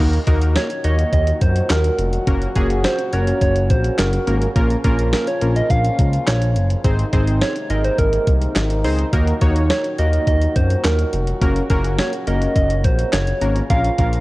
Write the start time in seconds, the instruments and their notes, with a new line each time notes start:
0.00 analog synth bass D#2, french horn section A#2 D#3 F#3 D#4 F#4, synth keys A#3 D#4 F#4 A#4
0.13 closed hi-hat
0.27 analog synth bass D#2, synth keys A#3 D#4 F#4 A#4, kick, closed hi-hat
0.42 closed hi-hat
0.56 soft synth lead C#5, snare, closed hi-hat
0.70 closed hi-hat
0.84 analog synth bass D#2, synth keys A#3 D#4 F#4 C#5, soft synth lead D#5, closed hi-hat
0.99 closed hi-hat
1.13 analog synth bass D#2, soft synth lead D#5, kick, closed hi-hat
1.27 closed hi-hat
1.41 analog synth bass F#2, soft synth lead C5, kick, closed hi-hat
1.56 closed hi-hat
1.70 analog synth bass D#2, soft synth lead A#4, snare, clap, closed hi-hat
1.84 closed hi-hat
1.99 analog synth bass F1, closed hi-hat
2.13 closed hi-hat
2.27 analog synth bass F#1, french horn section C#3 C#4, synth keys A#3 C#4 F#4 A#4, kick, closed hi-hat
2.42 closed hi-hat
2.55 analog synth bass F#1, synth keys A#3 C#4 F#4 G#4, kick, closed hi-hat
2.70 closed hi-hat
2.84 soft synth lead C5, snare, closed hi-hat
2.99 closed hi-hat
3.13 analog synth bass F#1, synth keys A#3 C#4 F#4 A#4, soft synth lead C#5, closed hi-hat
3.27 closed hi-hat
3.41 analog synth bass F#1, soft synth lead C#5, kick, closed hi-hat
3.56 closed hi-hat
3.70 analog synth bass A#1, soft synth lead C5, kick, closed hi-hat
3.84 closed hi-hat
3.99 analog synth bass F#1, soft synth lead A#4, snare, clap, closed hi-hat
4.13 closed hi-hat
4.27 analog synth bass G#1, synth keys A#3 C#4 F#4 A#4, closed hi-hat
4.42 closed hi-hat
4.56 analog synth bass A#1, french horn section A#2 F3 F4, synth keys A#3 C#4 F4 A#4, kick, closed hi-hat
4.70 closed hi-hat
4.84 analog synth bass A#1, synth keys A#3 C#4 F4 A#4, kick, closed hi-hat
4.99 closed hi-hat
5.13 soft synth lead A#4, snare, closed hi-hat
5.27 soft synth lead C#5, closed hi-hat
5.41 analog synth bass A#1, synth keys A#3 C#4 F4 A#4, closed hi-hat
5.56 soft synth lead D#5, closed hi-hat
5.70 analog synth bass A#1, soft synth lead F5, kick, closed hi-hat
5.84 closed hi-hat
5.99 analog synth bass C#2, kick, closed hi-hat
6.13 closed hi-hat
6.27 analog synth bass A#1, soft synth lead C#5, snare, clap, closed hi-hat
6.42 closed hi-hat
6.56 analog synth bass F#1, closed hi-hat
6.70 closed hi-hat
6.84 analog synth bass G#1, french horn section C3 D#3 G#3 A#3 D#4, synth keys C4 D#4 G#4 C5, kick, closed hi-hat
6.99 closed hi-hat
7.13 analog synth bass G#1, synth keys C4 D#4 G#4 C5, kick, closed hi-hat
7.27 closed hi-hat
7.41 soft synth lead C#5, snare, closed hi-hat
7.56 closed hi-hat
7.70 analog synth bass G#1, synth keys C4 D#4 G#4 A#4, soft synth lead D#5, closed hi-hat
7.85 soft synth lead C5, closed hi-hat
7.99 analog synth bass G#1, soft synth lead A#4, kick, closed hi-hat
8.13 closed hi-hat
8.27 analog synth bass C2, kick, closed hi-hat
8.42 closed hi-hat
8.56 analog synth bass G#1, snare, clap, closed hi-hat
8.70 closed hi-hat
8.84 analog synth bass C#2, synth keys C4 D#4 G#4 C5, open hi-hat
8.99 closed hi-hat
9.13 analog synth bass D#2, french horn section A#2 F#3 F#4, synth keys A#3 D#4 F#4 A#4, kick, closed hi-hat
9.27 closed hi-hat
9.41 analog synth bass D#2, synth keys A#3 D#4 F#4 C#5, kick, closed hi-hat
9.56 closed hi-hat
9.70 soft synth lead C#5, snare, closed hi-hat
9.84 closed hi-hat
9.98 analog synth bass D#2, synth keys A#3 D#4 F#4 A#4, soft synth lead D#5, closed hi-hat
10.13 closed hi-hat
10.27 analog synth bass D#2, soft synth lead D#5, kick, closed hi-hat
10.41 closed hi-hat
10.56 analog synth bass F#2, soft synth lead C5, kick, closed hi-hat
10.70 closed hi-hat
10.85 analog synth bass D#2, soft synth lead A#4, snare, clap, closed hi-hat
10.99 closed hi-hat
11.13 analog synth bass F1, closed hi-hat
11.27 closed hi-hat
11.41 analog synth bass F#1, french horn section C#3 C#4, synth keys A#3 C#4 F#4 A#4, kick, closed hi-hat
11.56 closed hi-hat
11.70 analog synth bass F#1, synth keys A#3 C#4 F#4 A#4, kick, closed hi-hat
11.84 closed hi-hat
11.98 soft synth lead C#5, snare, closed hi-hat
12.13 closed hi-hat
12.27 analog synth bass F#1, synth keys A#3 C#4 F#4 A#4, soft synth lead D#5, closed hi-hat
12.42 closed hi-hat
12.56 analog synth bass F#1, soft synth lead D#5, kick, closed hi-hat
12.70 closed hi-hat
12.84 analog synth bass A#1, soft synth lead C5, kick, closed hi-hat
12.99 closed hi-hat
13.13 analog synth bass F#1, soft synth lead C#5, snare, clap, closed hi-hat
13.27 closed hi-hat
13.41 analog synth bass G#1, synth keys A#3 C#4 F#4 A#4, closed hi-hat
13.56 closed hi-hat
13.70 analog synth bass A#1, french horn section A#2 F3 F4, synth keys A#3 C#4 F4 A#4, soft synth lead F5, kick, closed hi-hat
13.84 closed hi-hat
13.98 analog synth bass A#1, synth keys A#3 C#4 F4 A#4, soft synth lead F5, kick, closed hi-hat
14.13 closed hi-hat